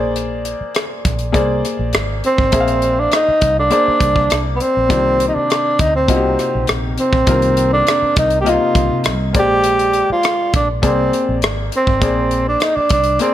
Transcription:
Already playing: A#1 A#3 G#4 C5 D5
0.16 closed hi-hat
0.45 closed hi-hat
0.61 muted fingered electric bass stroke
0.75 cross-stick, closed hi-hat
1.05 A#1, kick, closed hi-hat
1.19 closed hi-hat
1.32 C2 A#3 G#4 C5 D5, kick, closed hi-hat
1.65 cross-stick, closed hi-hat
1.79 A#1
1.93 G#1, cross-stick, closed hi-hat
2.24 C4, closed hi-hat
2.38 G#1, kick
2.52 A#1 A#3 G#4 C5 E5, kick, closed hi-hat
2.60 F5
2.68 closed hi-hat
2.82 closed hi-hat
2.99 D4
3.12 D#4, cross-stick, closed hi-hat
3.28 muted fingered electric bass stroke
3.41 C2, kick, closed hi-hat
3.59 D4
3.70 A#3 G#4 C5 D5, closed hi-hat
3.88 muted fingered electric bass stroke
4.01 C2, kick, cross-stick, closed hi-hat
4.16 kick
4.30 C2, cross-stick, closed hi-hat
4.55 B3
4.60 C4, closed hi-hat
4.77 A#1
4.89 C2 C3 D#3 A#3 F4 D5, kick, closed hi-hat
5.20 closed hi-hat
5.28 D#4
5.35 D4, muted fingered electric bass stroke
5.50 cross-stick, closed hi-hat
5.79 D2 D#4, kick, closed hi-hat
5.95 C4
6.08 C2 C3 A#3 D#4 F4 F#4, kick, closed hi-hat
6.16 G4
6.39 cross-stick, closed hi-hat
6.55 A#1
6.67 A#1, cross-stick, closed hi-hat
6.98 C4, closed hi-hat
7.13 A#1, kick
7.27 C2 C3 D#3 A#3 F4 A#4, kick, closed hi-hat
7.42 closed hi-hat
7.57 closed hi-hat
7.73 D4
7.87 cross-stick, closed hi-hat
8.02 muted fingered electric bass stroke
8.16 C2 D#4, kick, closed hi-hat
8.30 closed hi-hat
8.41 C3 G4
8.45 A#3 D#4 F4 D#5, closed hi-hat
8.50 F4
8.75 C2, kick, cross-stick, closed hi-hat
8.90 C3
9.04 C2, cross-stick, closed hi-hat
9.33 A#1 G#3 A#3 C5 D5, kick, closed hi-hat
9.39 G4
9.64 closed hi-hat
9.79 closed hi-hat
9.93 closed hi-hat
10.10 F4, muted fingered electric bass stroke
10.23 cross-stick, closed hi-hat
10.54 A#1 D4, kick, closed hi-hat
10.82 C2 A#3 C4 G#4 C5 D5, kick, closed hi-hat
11.13 closed hi-hat
11.29 A#1
11.42 G#1, cross-stick, closed hi-hat
11.72 C4, closed hi-hat
11.87 G#1, kick
12.00 A#1 A#3 G#4 C5 D5, kick, closed hi-hat
12.31 closed hi-hat
12.48 D4
12.60 D#4, cross-stick, closed hi-hat
12.76 D4, muted fingered electric bass stroke
12.89 C2 D4, kick, closed hi-hat
13.04 closed hi-hat
13.19 A#3 C4 G#4 C5 D5, closed hi-hat

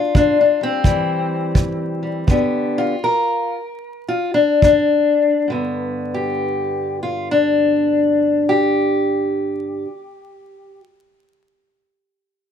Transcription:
Already playing: G2 D4 F4
0.15 G2 D4, kick
0.41 D4
0.61 G3 C4
0.84 C3 E3 G3, kick
1.55 C3, kick
2.03 G3
2.27 G2 D3 B3 D4 G4, kick
2.78 F4
3.04 A#4
4.08 F4
4.34 D4
4.62 G#2 D4, kick
5.48 G2 D3
5.52 B3
6.14 G4
7.03 F4
7.31 D4
8.49 G4

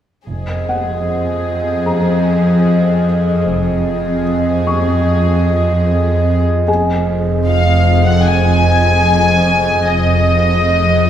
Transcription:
0.27 F1 F2 G#4 C5 D#5
0.69 F#5
1.86 A#5
3.46 F1 F2 C4 G#4 D#5
4.67 C#6
6.67 F1 F2 G#4 C5 D#5 G#5
7.48 F5
8.07 F#5
8.27 G#5
9.87 F1 F2 G#4 C5 D#5

